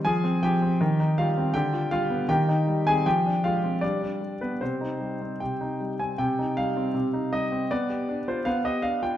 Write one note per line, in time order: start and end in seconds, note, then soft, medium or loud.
0.05 0.41 F3 medium
0.05 0.40 G#4 medium
0.05 0.42 G#5 medium
0.24 0.53 C4 soft
0.43 0.72 F3 soft
0.43 1.14 G4 medium
0.43 1.17 G5 medium
0.62 0.80 C4 soft
0.81 1.53 D#3 medium
1.00 1.29 D#4 soft
1.18 1.48 G3 soft
1.18 1.53 F4 medium
1.18 1.55 F5 medium
1.37 1.55 C4 soft
1.54 2.27 D3 medium
1.54 1.90 G4 medium
1.54 1.92 G5 medium
1.73 1.91 F4 soft
1.91 2.22 G3 medium
1.91 2.27 F4 medium
1.91 2.29 F5 medium
2.10 2.29 B3 soft
2.29 3.03 D#3 medium
2.29 2.82 G4 medium
2.29 2.86 G5 medium
2.48 2.79 D#4 soft
2.67 2.98 G3 soft
2.86 3.06 C4 soft
2.86 3.05 G#4 medium
2.86 3.06 G#5 medium
3.06 3.81 F3 medium
3.06 3.42 G4 medium
3.06 3.44 G5 medium
3.26 3.56 D4 soft
3.44 3.75 G#3 soft
3.44 3.80 F4 medium
3.44 3.83 F5 medium
3.64 3.83 C4 soft
3.81 4.20 G3 medium
3.81 4.00 D4 soft
3.81 4.41 D5 medium
4.02 4.33 D4 soft
4.21 4.53 G3 soft
4.41 4.60 B3 soft
4.41 4.61 B4 medium
4.61 5.40 C3 soft
4.61 5.20 C4 soft
4.61 5.80 C5 medium
4.81 5.13 D#4 soft
5.00 5.32 G3 soft
5.22 5.53 C4 soft
5.40 6.17 C3 soft
5.40 6.00 G5 medium
5.61 5.92 D#4 soft
5.80 6.11 G3 soft
5.99 6.19 C4 soft
5.99 6.19 G#5 medium
6.18 6.93 C3 medium
6.18 6.57 G5 medium
6.39 6.69 D#4 soft
6.57 6.88 G3 soft
6.57 7.33 F5 medium
6.77 7.07 C4 soft
6.94 7.68 C3 medium
7.13 7.44 D#4 soft
7.33 7.63 G3 soft
7.33 7.70 D#5 medium
7.52 7.71 C4 soft
7.71 8.45 B3 medium
7.71 8.27 D5 medium
7.90 8.20 G4 soft
8.09 8.39 D4 soft
8.28 8.58 F4 soft
8.28 8.47 C5 medium
8.45 9.17 B3 medium
8.45 8.65 F5 medium
8.64 8.95 G4 soft
8.64 8.84 D#5 medium
8.82 9.14 D4 soft
8.82 9.02 F5 medium
9.03 9.17 F4 soft
9.03 9.17 G5 medium